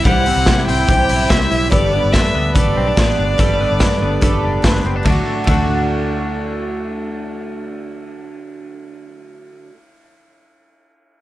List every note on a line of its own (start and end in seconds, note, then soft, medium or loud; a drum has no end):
0.00 0.26 C4 medium
0.00 0.46 E4 medium
0.05 0.32 C2 medium
0.05 0.26 C3 medium
0.05 0.27 E3 medium
0.05 1.71 G3 medium
0.05 0.27 G3 medium
0.05 0.26 C4 medium
0.05 0.25 E4 medium
0.05 0.89 G4 medium
0.05 0.64 F#5 medium
0.05 kick medium
0.05 closed hi-hat medium
0.26 0.46 G3 soft
0.26 0.67 C4 medium
0.26 0.47 C4 soft
0.26 0.47 E4 soft
0.26 open hi-hat medium
0.36 0.45 C2 medium
0.46 0.69 C3 medium
0.46 0.87 E3 medium
0.46 0.89 G3 medium
0.46 0.88 C4 medium
0.46 1.09 E4 medium
0.46 0.89 E4 medium
0.46 kick loud
0.46 snare medium
0.46 closed hi-hat medium
0.67 0.85 C2 medium
0.67 1.29 C4 medium
0.67 1.31 G5 medium
0.67 open hi-hat medium
0.88 1.06 C2 medium
0.88 1.30 C3 medium
0.88 1.28 E3 medium
0.88 1.31 G3 medium
0.88 1.31 C4 medium
0.88 1.31 E4 medium
0.88 1.72 G4 medium
0.88 kick loud
0.88 closed hi-hat medium
1.09 1.27 B1 medium
1.09 1.50 E4 medium
1.09 open hi-hat medium
1.29 1.48 C2 medium
1.29 1.51 E3 medium
1.29 1.52 G3 medium
1.29 1.76 C4 medium
1.29 1.51 C4 medium
1.29 1.49 E4 medium
1.29 1.71 E5 medium
1.29 kick medium
1.29 snare loud
1.29 closed hi-hat medium
1.50 1.69 B1 medium
1.50 1.69 G3 soft
1.50 1.71 C4 soft
1.50 1.71 E4 soft
1.50 1.76 E4 medium
1.50 open hi-hat medium
1.70 1.99 G1 medium
1.70 1.92 G3 medium
1.70 3.38 G3 medium
1.70 1.92 A3 medium
1.70 1.92 D4 medium
1.70 1.93 G4 medium
1.70 2.55 A4 medium
1.70 1.91 B4 medium
1.70 2.14 D5 medium
1.70 kick medium
1.70 closed hi-hat medium
1.92 2.34 B3 medium
1.92 2.12 D4 soft
1.92 2.13 G4 soft
1.92 2.13 B4 soft
2.04 2.15 G1 medium
2.13 2.32 G2 medium
2.13 2.55 A3 soft
2.13 2.56 D4 medium
2.13 2.77 D4 medium
2.13 2.55 G4 medium
2.13 2.55 B4 medium
2.13 2.55 E5 medium
2.13 kick medium
2.13 snare medium
2.13 closed hi-hat medium
2.35 2.57 D2 medium
2.35 2.96 B3 medium
2.55 2.73 G1 medium
2.55 2.97 G3 medium
2.55 2.96 A3 medium
2.55 2.97 D4 medium
2.55 2.97 G4 medium
2.55 3.39 A4 medium
2.55 2.98 B4 medium
2.55 4.61 D5 medium
2.55 kick loud
2.55 closed hi-hat medium
2.77 2.95 B1 medium
2.77 2.87 C4 medium
2.87 3.18 D4 soft
2.97 3.15 A1 medium
2.97 3.38 A3 medium
2.97 3.59 B3 medium
2.97 3.39 D4 medium
2.97 3.39 G4 medium
2.97 3.39 B4 medium
2.97 kick loud
2.97 snare loud
2.97 closed hi-hat medium
3.19 3.36 G1 medium
3.19 3.81 D4 medium
3.38 3.66 G1 medium
3.38 3.80 G3 medium
3.38 5.06 G3 medium
3.38 3.79 A3 medium
3.38 3.80 D4 medium
3.38 3.80 G4 medium
3.38 4.23 A4 medium
3.38 3.81 B4 medium
3.38 kick medium
3.38 closed hi-hat medium
3.61 4.01 B3 medium
3.71 3.79 G1 medium
3.79 3.98 G2 medium
3.79 4.21 A3 medium
3.79 4.22 D4 medium
3.79 4.44 D4 soft
3.79 4.21 G4 medium
3.79 4.22 B4 medium
3.79 kick medium
3.79 snare medium
3.79 closed hi-hat medium
4.01 4.19 G1 medium
4.01 4.64 B3 medium
4.21 4.40 G1 medium
4.21 4.64 G3 medium
4.21 4.62 A3 medium
4.21 4.63 D4 medium
4.21 4.63 G4 medium
4.21 5.09 A4 medium
4.21 4.64 B4 medium
4.21 kick loud
4.21 closed hi-hat medium
4.43 4.61 F#1 medium
4.43 4.86 D4 soft
4.62 4.82 G1 medium
4.62 4.84 A3 medium
4.62 5.04 B3 soft
4.62 4.85 D4 medium
4.62 4.83 G4 medium
4.62 4.82 B4 medium
4.62 kick medium
4.62 snare loud
4.62 closed hi-hat medium
4.83 5.02 F#1 medium
4.83 4.96 C4 medium
4.83 5.06 D4 soft
4.83 5.06 G4 soft
4.83 5.05 B4 medium
4.96 5.06 D4 soft
5.03 5.17 D2 medium
5.03 5.44 D3 medium
5.03 5.47 F#3 medium
5.03 5.46 A3 medium
5.03 kick medium
5.03 ride medium
5.08 5.49 A3 medium
5.08 5.49 D4 medium
5.08 5.51 D4 medium
5.08 5.51 F#4 medium
5.12 5.53 F#4 medium
5.44 9.68 D2 medium
5.44 9.69 D3 medium
5.44 9.72 F#3 medium
5.44 9.71 A3 medium
5.44 kick medium
5.44 ride medium
5.49 9.75 A3 medium
5.49 9.74 D4 medium
5.49 9.77 D4 medium
5.49 9.76 F#4 medium
5.54 9.79 F#4 medium